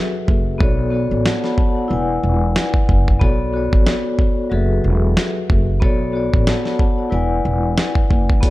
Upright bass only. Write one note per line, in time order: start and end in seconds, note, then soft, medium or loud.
0.28 0.58 F#1 medium
0.60 1.07 B1 loud
1.11 1.24 A1 medium
1.91 2.21 E1 loud
2.23 2.53 E1 loud
2.89 3.19 F#1 medium
3.21 3.68 B1 loud
3.73 3.86 A1 medium
4.52 4.82 F#1 loud
4.84 5.14 E1 medium
5.50 5.80 F#1 medium
5.82 6.29 B1 loud
6.34 6.47 A1 medium
7.12 7.42 E1 loud
7.45 7.75 E1 medium
8.11 8.40 F#1 medium